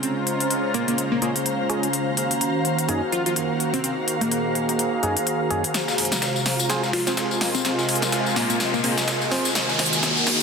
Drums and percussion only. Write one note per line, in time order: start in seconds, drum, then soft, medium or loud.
0.03 closed hi-hat medium
0.27 closed hi-hat medium
0.40 closed hi-hat medium
0.51 closed hi-hat medium
0.74 closed hi-hat soft
0.88 closed hi-hat soft
0.98 closed hi-hat medium
1.22 closed hi-hat soft
1.36 closed hi-hat soft
1.46 closed hi-hat medium
1.70 closed hi-hat soft
1.83 closed hi-hat medium
1.93 closed hi-hat medium
2.17 closed hi-hat medium
2.31 closed hi-hat medium
2.41 closed hi-hat medium
2.65 closed hi-hat soft
2.79 closed hi-hat medium
2.89 closed hi-hat medium
3.12 closed hi-hat soft
3.26 closed hi-hat medium
3.36 closed hi-hat medium
3.60 closed hi-hat soft
3.74 closed hi-hat medium
3.84 closed hi-hat medium
4.08 closed hi-hat medium
4.21 closed hi-hat medium
4.32 closed hi-hat medium
4.55 closed hi-hat soft
4.69 closed hi-hat medium
4.79 closed hi-hat medium
5.03 closed hi-hat soft
5.17 closed hi-hat medium
5.27 closed hi-hat medium
5.51 closed hi-hat soft
5.64 closed hi-hat medium
5.74 snare soft
5.74 closed hi-hat medium
5.74 ride medium
5.74 tambourine medium
5.88 snare soft
5.88 tambourine soft
5.98 open hi-hat loud
5.98 ride medium
6.05 closed hi-hat medium
6.12 snare soft
6.12 closed hi-hat medium
6.12 tambourine medium
6.22 snare loud
6.22 closed hi-hat medium
6.22 ride medium
6.22 tambourine medium
6.36 tambourine soft
6.46 snare medium
6.46 open hi-hat medium
6.46 ride medium
6.59 closed hi-hat medium
6.59 tambourine medium
6.70 snare medium
6.70 closed hi-hat medium
6.70 ride medium
6.70 tambourine medium
6.83 snare soft
6.83 tambourine soft
6.93 snare loud
6.93 open hi-hat loud
6.93 ride medium
7.07 snare soft
7.07 closed hi-hat medium
7.07 tambourine medium
7.17 snare loud
7.17 closed hi-hat medium
7.17 ride medium
7.17 tambourine medium
7.31 tambourine soft
7.41 snare medium
7.41 open hi-hat medium
7.41 ride medium
7.55 snare medium
7.55 closed hi-hat medium
7.55 tambourine medium
7.65 snare medium
7.65 closed hi-hat medium
7.65 ride medium
7.65 tambourine medium
7.79 snare soft
7.79 tambourine soft
7.89 open hi-hat loud
7.89 ride medium
7.95 closed hi-hat medium
8.02 snare medium
8.02 closed hi-hat medium
8.02 tambourine medium
8.12 snare loud
8.12 closed hi-hat medium
8.12 ride medium
8.12 tambourine medium
8.26 tambourine soft
8.36 snare medium
8.36 open hi-hat medium
8.36 ride medium
8.50 closed hi-hat medium
8.50 tambourine medium
8.60 snare medium
8.60 closed hi-hat medium
8.60 ride medium
8.60 tambourine medium
8.74 tambourine soft
8.84 open hi-hat loud
8.84 ride medium
8.98 snare medium
8.98 snare soft
8.98 closed hi-hat medium
8.98 tambourine medium
9.08 snare loud
9.08 closed hi-hat medium
9.08 ride medium
9.08 tambourine medium
9.22 tambourine soft
9.31 snare medium
9.31 open hi-hat medium
9.31 ride medium
9.45 snare soft
9.45 closed hi-hat medium
9.45 tambourine medium
9.55 snare medium
9.55 closed hi-hat medium
9.55 ride medium
9.55 tambourine medium
9.69 snare soft
9.69 tambourine soft
9.79 snare medium
9.79 open hi-hat loud
9.79 ride medium
9.86 closed hi-hat medium
9.93 snare soft
9.93 closed hi-hat medium
9.93 tambourine medium
10.03 snare loud
10.03 snare medium
10.03 closed hi-hat medium
10.03 ride medium
10.03 tambourine medium
10.17 tambourine soft
10.27 snare medium
10.27 open hi-hat loud
10.27 ride medium